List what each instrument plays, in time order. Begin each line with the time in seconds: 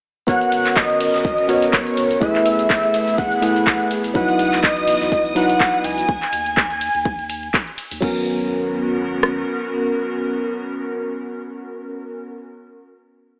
0.27 analog synth bass G#1, synth stab B3 F#4 A#4 C#5, analog synth pad B3 C#4 F#4 A#4, soft synth lead F#5, kick, closed hi-hat, shaker
0.41 closed hi-hat, shaker
0.52 analog synth bass G#1, closed hi-hat, open hi-hat, ride
0.65 snare, clap, closed hi-hat, shaker
0.76 soft synth lead D#5, kick, snare, clap, closed hi-hat, shaker
0.90 closed hi-hat, shaker
1.00 open hi-hat, ride
1.14 analog synth bass G#1, snare, closed hi-hat, shaker
1.25 soft synth lead D#5, kick, closed hi-hat, shaker
1.38 closed hi-hat, shaker
1.48 synth stab B3 F#4 A#4 C#5, closed hi-hat, open hi-hat, ride
1.62 open hi-hat, shaker
1.73 soft synth lead C#5, kick, snare, clap, closed hi-hat, shaker
1.86 closed hi-hat, shaker
1.97 analog synth bass G#1, closed hi-hat, open hi-hat, ride
2.11 closed hi-hat, shaker
2.20 analog synth bass F#1, synth stab A3 E4 G#4 B4, analog synth pad A3 E4 G#4, soft synth lead E5, kick, closed hi-hat, shaker
2.35 clap, closed hi-hat, shaker
2.46 analog synth bass F#1, closed hi-hat, open hi-hat, ride
2.59 closed hi-hat, shaker
2.70 soft synth lead E5, kick, snare, clap, closed hi-hat, shaker
2.83 closed hi-hat, shaker
2.94 closed hi-hat, open hi-hat, ride
3.08 analog synth bass F#1, closed hi-hat, shaker
3.18 soft synth lead F#5, kick, closed hi-hat, shaker
3.31 closed hi-hat, shaker
3.41 synth stab A3 E4 G#4 B4, closed hi-hat, open hi-hat, ride
3.56 closed hi-hat, shaker
3.66 kick, snare, clap, closed hi-hat, shaker
3.80 closed hi-hat, shaker
3.91 closed hi-hat, open hi-hat, ride
4.04 analog synth bass F#1, open hi-hat, shaker
4.14 analog synth bass C#2, analog synth pad E3 F#4 D#5, synth stab F#3 D#4 E4 B4, soft synth lead F#5, string machine D#6, kick, closed hi-hat, shaker
4.29 closed hi-hat, shaker
4.39 analog synth bass C#2, closed hi-hat, open hi-hat, ride
4.52 snare, clap, closed hi-hat, shaker
4.63 soft synth lead D#5, kick, snare, clap, closed hi-hat, shaker
4.77 closed hi-hat, shaker
4.88 open hi-hat, ride
5.01 analog synth bass C#2, snare, closed hi-hat, shaker
5.12 soft synth lead D#5, kick, closed hi-hat, shaker
5.25 closed hi-hat, shaker
5.35 synth stab F#3 D#4 E4 B4, soft synth lead F#5, closed hi-hat, open hi-hat, ride
5.49 open hi-hat, shaker
5.60 kick, snare, clap, closed hi-hat, shaker
5.74 closed hi-hat, shaker
5.84 analog synth bass C#2, soft synth lead G#5, closed hi-hat, open hi-hat, ride
5.98 closed hi-hat, shaker
6.09 analog synth bass D#2, kick
6.22 clap, closed hi-hat
6.33 analog synth bass D#2, open hi-hat, ride
6.46 closed hi-hat
6.57 kick, clap
6.70 closed hi-hat
6.81 open hi-hat, ride
6.95 analog synth bass D#2, closed hi-hat
7.05 kick
7.19 closed hi-hat
7.30 open hi-hat, ride
7.43 closed hi-hat
7.54 kick, clap
7.67 closed hi-hat
7.78 open hi-hat, ride
7.91 analog synth bass D#2, open hi-hat
8.00 analog synth bass G#1, synth stab F#3 B3 C#4 A#4, analog synth pad B3 C#4 F#4 A#4, kick, crash
9.23 cross-stick